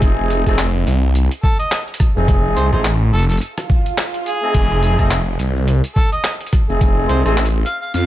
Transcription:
Already playing: horn section A3 C4 D#4 G#4
0.02 detuned saw bass F1, kick, closed hi-hat, shaker
0.30 closed hi-hat, shaker
0.46 detuned saw bass F1, horn section A3 C4 D#4 G#4, kick, cross-stick, closed hi-hat, shaker
0.49 cross-stick
0.54 cross-stick
0.59 clap, closed hi-hat, shaker
0.87 detuned saw bass C2, closed hi-hat, shaker
1.03 shaker
1.15 closed hi-hat, shaker
1.31 closed hi-hat
1.43 harmonica A4, kick, shaker
1.59 harmonica D#5, closed hi-hat, shaker
1.72 clap, closed hi-hat, shaker
1.88 closed hi-hat
1.94 closed hi-hat
2.00 kick, cross-stick, closed hi-hat, shaker
2.16 detuned saw bass F1, horn section A3 C4 D#4 G#4, shaker
2.28 kick, closed hi-hat, shaker
2.56 detuned saw bass C2, harmonica C5, closed hi-hat, shaker
2.72 detuned saw bass A1, horn section A3 C4 D#4 G#4, harmonica C5, kick, cross-stick, shaker
2.85 clap, closed hi-hat, shaker
3.13 detuned saw bass F1, harmonica A4, closed hi-hat, shaker
3.19 closed hi-hat
3.23 closed hi-hat
3.29 harmonica A4, closed hi-hat, shaker
3.32 closed hi-hat
3.37 closed hi-hat, shaker
3.41 closed hi-hat, swell
3.58 cross-stick, closed hi-hat
3.70 kick, shaker
3.86 closed hi-hat, shaker
3.98 clap, closed hi-hat, shaker
4.14 closed hi-hat
4.26 harmonica G#4, closed hi-hat, shaker
4.42 horn section A3 C4 D#4 G#4, shaker
4.54 detuned saw bass F1, kick, closed hi-hat, crash, shaker
4.83 closed hi-hat, shaker
4.99 detuned saw bass F1, horn section A3 C4 D#4 G#4, kick, cross-stick, closed hi-hat, shaker
5.11 clap, closed hi-hat, shaker
5.39 detuned saw bass C2, closed hi-hat, shaker
5.55 shaker
5.68 closed hi-hat, shaker
5.84 closed hi-hat
5.96 harmonica A4, kick, shaker
6.12 harmonica D#5, closed hi-hat, shaker
6.24 clap, closed hi-hat, shaker
6.41 closed hi-hat
6.47 closed hi-hat
6.53 kick, cross-stick, closed hi-hat, shaker
6.69 detuned saw bass F1, horn section A3 C4 D#4 G#4, shaker
6.81 kick, closed hi-hat, shaker
7.09 detuned saw bass C2, harmonica C5, closed hi-hat, shaker
7.25 detuned saw bass A1, horn section A3 C4 D#4 G#4, harmonica C5, cross-stick, closed hi-hat, shaker
7.38 clap, shaker
7.46 closed hi-hat
7.65 harmonica F5, closed hi-hat, shaker
7.82 harmonica F5, shaker
7.94 detuned saw bass F2, harmonica F5, closed hi-hat, shaker

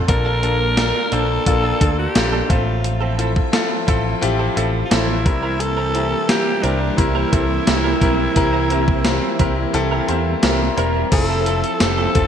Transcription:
Already playing: grand piano C4 D4 F4 A4 C5
0.08 picked electric bass A#1, grand piano A#2 A#3 D4 F4 A4, string machine A#3 D4, alto saxophone A#4, muted clean electric guitar stroke, kick, closed hi-hat
0.25 clean electric guitar D4 F4 A4
0.42 grand piano A#3 D4 F4 A4, clean electric guitar D4 F4 A4, closed hi-hat
0.61 muted clean electric guitar stroke
0.77 grand piano A#3 D4 F4 A4, muted clean electric guitar stroke, snare, closed hi-hat
0.95 muted clean electric guitar stroke
1.12 picked electric bass A#1, grand piano A#3 D4 F4 C5, clean electric guitar D4 F4 A4, alto saxophone A4, closed hi-hat
1.46 picked electric bass A#1, grand piano A#3 D4 F4 A4, muted clean electric guitar stroke, kick, closed hi-hat
1.63 clean electric guitar D4 F4 A4
1.80 picked electric bass D2, grand piano A#3 D4 F4 A4, clean electric guitar D4 F4 A4, kick, closed hi-hat
1.98 alto saxophone G4, muted clean electric guitar stroke
2.15 picked electric bass A#1, grand piano A#3 D4 F4 A4, muted clean electric guitar stroke, snare, closed hi-hat
2.32 clean electric guitar D4 F4 A4
2.49 picked electric bass A1, grand piano A2 C4 F4 A4 E5, string machine F3 E5, clean electric guitar C4 E4 A4, alto saxophone F4, kick, closed hi-hat
2.66 muted clean electric guitar stroke
2.84 muted clean electric guitar stroke, closed hi-hat
3.01 clean electric guitar C4 E4 A4
3.18 grand piano C4 E4 F4 A4, clean electric guitar C4 E4 A4, closed hi-hat
3.36 muted clean electric guitar stroke, kick
3.52 grand piano C4 E4 F4 A4, muted clean electric guitar stroke, snare, closed hi-hat
3.70 muted clean electric guitar stroke
3.87 picked electric bass A1, clean electric guitar C4 E4 A4, grand piano C4 E4 F4 A4, kick, closed hi-hat
4.04 muted clean electric guitar stroke
4.21 picked electric bass A1, grand piano C4 E4 F4 G4, muted clean electric guitar stroke, closed hi-hat
4.39 clean electric guitar C4 E4 A4
4.56 picked electric bass A1, grand piano C4 E4 F4 A4, clean electric guitar C4 E4 A4, closed hi-hat
4.75 muted clean electric guitar stroke
4.85 alto saxophone F4
4.90 picked electric bass A1, grand piano C4 E4 F4 A4, clean electric guitar C4 E4 A4, alto saxophone E4, snare, closed hi-hat
5.08 muted clean electric guitar stroke
5.25 picked electric bass C2, grand piano C3 C4 E4 G4 A#4, string machine E3 G3 A#3 C4, muted clean electric guitar stroke, kick, closed hi-hat
5.43 clean electric guitar C4 E4 A#4
5.59 alto saxophone A4, muted clean electric guitar stroke, closed hi-hat
5.77 clean electric guitar C4 E4 A#4
5.94 grand piano C4 E4 G4 A#4, clean electric guitar C4 E4 A#4, closed hi-hat
6.12 muted clean electric guitar stroke
6.28 grand piano C4 E4 G4 A#4, alto saxophone G4, muted clean electric guitar stroke, snare, closed hi-hat
6.46 muted clean electric guitar stroke
6.63 picked electric bass C2, grand piano C4 E4 G4 A#4, clean electric guitar C4 E4 A#4, alto saxophone D4, closed hi-hat
6.81 muted clean electric guitar stroke
6.97 picked electric bass C2, grand piano C4 E4 G4 A#4, alto saxophone E4, muted clean electric guitar stroke, kick, closed hi-hat
7.15 clean electric guitar C4 E4 A#4
7.32 picked electric bass C2, grand piano C4 E4 G4 A4, clean electric guitar C4 E4 A#4, kick, closed hi-hat
7.50 muted clean electric guitar stroke
7.66 picked electric bass C2, grand piano C4 E4 G4 A#4, muted clean electric guitar stroke, snare, closed hi-hat
7.84 clean electric guitar C4 E4 A#4
8.01 picked electric bass B1, grand piano C4 E4 G4 A#4, clean electric guitar C4 E4 A#4, kick, closed hi-hat
8.19 muted clean electric guitar stroke
8.36 picked electric bass C2, grand piano C4 E4 G4 A#4, muted clean electric guitar stroke, kick, closed hi-hat
8.53 clean electric guitar C4 E4 A#4
8.70 grand piano C4 E4 G4 A#4, clean electric guitar C4 E4 A#4, closed hi-hat
8.88 muted clean electric guitar stroke, kick
9.04 grand piano C4 E4 G4 A#4, muted clean electric guitar stroke, snare, closed hi-hat
9.22 muted clean electric guitar stroke
9.39 picked electric bass C2, grand piano C4 E4 G4 A#4 A#5, clean electric guitar C4 E4 A#4, kick, closed hi-hat
9.57 muted clean electric guitar stroke
9.73 picked electric bass C2, grand piano C4 E4 G4 A4 A5, muted clean electric guitar stroke, closed hi-hat
9.91 clean electric guitar C4 E4 A#4, grand piano G5
10.08 picked electric bass E2, grand piano C4 E4 G4 C5 F5, clean electric guitar C4 E4 A#4, closed hi-hat
10.26 muted clean electric guitar stroke
10.42 picked electric bass C2, grand piano C4 E4 G4 A#4 E5, muted clean electric guitar stroke, snare, closed hi-hat
10.60 muted clean electric guitar stroke
10.76 picked electric bass E1, grand piano C4 E4 G4 A#4 D5, clean electric guitar C4 E4 A#4, closed hi-hat
10.94 clean electric guitar C4 E4 A#4
11.11 picked electric bass F1, string machine F3 C4 E4 A4, grand piano C4 E4 F4 A4, alto saxophone A4, muted clean electric guitar stroke, kick, closed hi-hat, crash
11.29 clean electric guitar C4 E4 A4
11.46 grand piano C4 E4 F4 A4, clean electric guitar C4 E4 A4, closed hi-hat
11.64 muted clean electric guitar stroke, closed hi-hat
11.80 picked electric bass F1, grand piano C4 E4 F4 G4, alto saxophone A4, muted clean electric guitar stroke, snare, closed hi-hat, tambourine
11.97 clean electric guitar C4 E4 A4
12.14 picked electric bass F1, grand piano C4 E4 F4 A4, kick, closed hi-hat

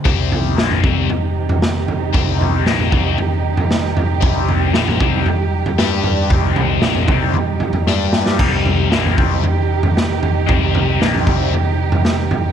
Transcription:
0.05 picked electric bass C2, overdriven electric guitar C3 G3 C4, string section C3 D#3 G3 D#4 G4, kick, floor tom
0.32 floor tom
0.56 picked electric bass A#1, overdriven electric guitar A#2 F3 A#3, snare
0.71 floor tom
0.82 picked electric bass C2, overdriven electric guitar C3 G3 C4, kick, floor tom
1.10 floor tom
1.49 floor tom
1.62 snare
1.88 floor tom
2.13 picked electric bass C2, overdriven electric guitar C3 G3 C4, kick, floor tom
2.41 floor tom
2.65 picked electric bass A#1, overdriven electric guitar A#2 F3 A#3, snare
2.80 floor tom
2.91 picked electric bass C2, overdriven electric guitar C3 G3 C4, kick, floor tom
3.18 floor tom
3.57 floor tom
3.71 snare
3.97 floor tom
4.21 picked electric bass C2, overdriven electric guitar C3 G3 C4, kick, floor tom
4.49 floor tom
4.73 picked electric bass A#1, overdriven electric guitar A#2 F3 A#3, snare
4.88 floor tom
5.00 picked electric bass C2, overdriven electric guitar C3 G3 C4, kick, floor tom
5.26 floor tom
5.66 floor tom
5.79 picked electric bass G2, overdriven electric guitar G3 D4 G4, string section D4, snare
6.04 floor tom
6.30 picked electric bass C2, string section C3 D#3 D#4, overdriven electric guitar C3 G3 C4, kick, floor tom
6.56 floor tom, mid tom
6.81 picked electric bass A#1, overdriven electric guitar A#2 F3 A#3, snare
6.95 floor tom
7.08 picked electric bass C2, overdriven electric guitar C3 G3 C4, kick, floor tom, mid tom
7.34 floor tom
7.60 floor tom
7.73 floor tom
7.87 picked electric bass G2, overdriven electric guitar G3 D4 G4, string section D4 G4, snare
8.13 snare
8.26 snare
8.39 picked electric bass C2, overdriven electric guitar C3 G3 C4, string section C3 D#3 D#4, kick, floor tom, crash
8.66 floor tom
8.90 picked electric bass A#1, overdriven electric guitar A#2 F3 A#3, snare
9.05 floor tom
9.17 picked electric bass C2, overdriven electric guitar C3 G3 C4, kick, floor tom
9.44 floor tom
9.83 floor tom
9.97 snare
10.23 floor tom
10.47 picked electric bass C2, overdriven electric guitar C3 G3 C4, kick, floor tom
10.75 floor tom
11.00 picked electric bass A#1, overdriven electric guitar A#2 F3 A#3, snare
11.15 floor tom
11.26 picked electric bass C2, overdriven electric guitar C3 G3 C4, kick, floor tom
11.54 floor tom
11.92 floor tom
12.05 snare
12.31 floor tom

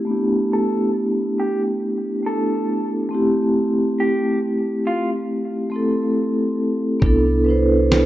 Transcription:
0.05 vibraphone A3 B3 D4
0.10 vibraphone E4 G4
0.53 clean electric guitar A4
1.40 clean electric guitar G4
2.23 vibraphone A3 B3 D4, clean electric guitar A4
2.27 vibraphone E4 A4
3.09 vibraphone A3 C4 E4
3.15 vibraphone G4
4.00 clean electric guitar G4
4.87 clean electric guitar F4
5.70 vibraphone A3 C4 E4
5.76 vibraphone A4
7.00 sub bass C2, vibraphone B3 D4, kick
7.04 vibraphone E4 A4
7.45 vibraphone D4 E4 B4
7.51 vibraphone C5
7.92 snare

